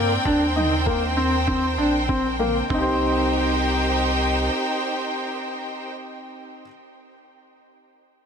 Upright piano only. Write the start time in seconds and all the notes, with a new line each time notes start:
Already playing: A#3
0.25 D4
0.56 D#4
0.86 A#3
1.17 C4
1.47 C4
1.78 D4
2.09 C4
2.39 A#3
2.70 C4 D#4
2.78 G4 C5